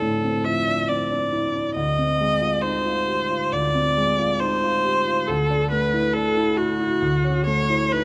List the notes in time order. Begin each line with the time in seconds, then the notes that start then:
Already playing: D2 F3 C4 D4 E4 A4
0.02 A2
0.24 C4
0.44 F3 E5
0.67 D4
0.88 C4 D5
1.11 D4
1.33 E4
1.54 D4
1.75 D2 D#5
1.99 C4
2.21 G#3
2.42 F4
2.62 D#4 C5
2.85 F4
3.08 G4
3.30 F4
3.52 D2 D5
3.75 C4
3.97 G#3
4.19 F4
4.40 D#4 C5
4.63 F4
4.85 G4
5.07 F4
5.27 D2 A4
5.50 D4
5.71 A3 B4
5.94 E4
6.13 D4 A4
6.37 E4
6.57 F#4
6.80 E4
7.02 D2
7.24 C#4
7.46 A3 C#5
7.70 E4
7.92 D#4 B4